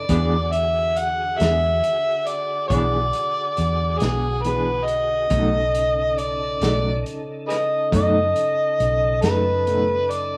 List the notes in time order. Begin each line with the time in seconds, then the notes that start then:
Already playing: D5
0.09 E2 D3 E3 B3 D4 F#4 G#4, kick, closed hi-hat
0.52 E5, closed hi-hat
0.96 F#5, closed hi-hat
1.38 E2 B3 D4 G#4 E5, snare, closed hi-hat
1.84 closed hi-hat
2.26 D5, closed hi-hat
2.68 B1 E3 B3 D4 G#4 D5, kick, closed hi-hat
3.13 closed hi-hat
3.57 E2, closed hi-hat
3.98 B1 G#4, snare, closed hi-hat
4.03 B3 D4
4.42 E3 B3 B4, closed hi-hat
4.47 D4 G#4
4.84 D#5, closed hi-hat
5.30 B1 B2 C#3 F#3 A3 D#4 A4, kick, closed hi-hat
5.75 closed hi-hat
6.18 D5, closed hi-hat
6.61 B1 F#3 A3 D#4, snare, closed hi-hat
7.06 closed hi-hat
7.48 G#4 B4 D#5, snare, closed hi-hat
7.92 F#2 B2 F#3 A3 D#4 D#5, kick, closed hi-hat
8.36 closed hi-hat
8.80 B1, closed hi-hat
9.21 F#2 D#4 B4, snare, closed hi-hat
9.25 F#3 A3
9.66 B2 F#3 A3 D#4, closed hi-hat
10.10 D5, closed hi-hat